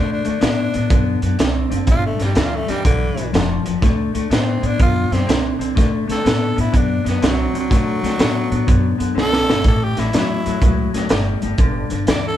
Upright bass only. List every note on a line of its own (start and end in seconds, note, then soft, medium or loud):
0.00 0.17 D2 medium
0.26 0.38 D2 medium
0.42 0.66 A2 medium
0.75 0.87 A2 medium
0.91 1.14 F#2 medium
1.22 1.34 F#2 medium
1.39 1.62 C2 medium
1.71 1.83 F#1 medium
1.88 2.11 G1 medium
2.19 2.32 G1 medium
2.36 2.60 D2 medium
2.68 2.80 D2 medium
2.85 3.09 B1 medium
3.17 3.29 B1 medium
3.33 3.57 F1 loud
3.66 3.78 F1 medium
3.82 4.06 D2 medium
4.15 4.26 D2 medium
4.30 4.54 A2 medium
4.63 4.75 A2 medium
4.80 5.03 F#2 medium
5.11 5.23 F#2 medium
5.28 5.51 C2 medium
5.60 5.72 C2 medium
5.77 6.01 D2 medium
6.09 6.21 D2 medium
6.25 6.49 A2 medium
6.58 6.70 A2 medium
6.74 6.97 F#2 loud
7.05 7.18 F#2 medium
7.22 7.46 C2 medium
7.54 7.66 C2 medium
7.71 7.94 D2 medium
8.03 8.15 D2 medium
8.19 8.43 A2 medium
8.51 8.63 A2 medium
8.68 8.91 F#2 loud
9.00 9.12 F#2 medium
9.16 9.40 C2 medium
9.48 9.65 G1 medium
9.65 9.88 A1 medium
9.98 10.09 A1 medium
10.13 10.37 E2 medium
10.46 10.58 E2 medium
10.61 10.85 C#2 medium
10.94 11.06 C#2 medium
11.11 11.34 G1 medium
11.43 11.55 G1 medium
11.59 11.82 G1 medium
11.91 12.03 G1 medium
12.07 12.31 D2 medium